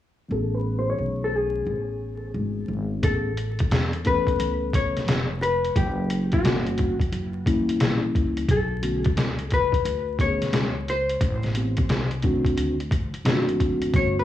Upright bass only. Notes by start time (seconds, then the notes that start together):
0.31 A1
0.98 B1
1.67 A1
2.34 G#1
2.68 G#1
3.03 A1
3.71 E2
4.39 C#2
4.95 muted upright bass stroke
5.07 F1
5.76 F#1
6.44 G1
7.00 muted upright bass stroke
7.12 F#1
7.68 muted upright bass stroke
7.81 A#1
8.15 C#2
8.49 B1
9.16 C#2
9.72 muted upright bass stroke
9.85 D2
10.41 muted upright bass stroke
10.53 C#2
11.21 A1
11.89 C2
12.44 muted upright bass stroke
12.57 D2
13.13 muted upright bass stroke
13.25 F#1
13.94 G1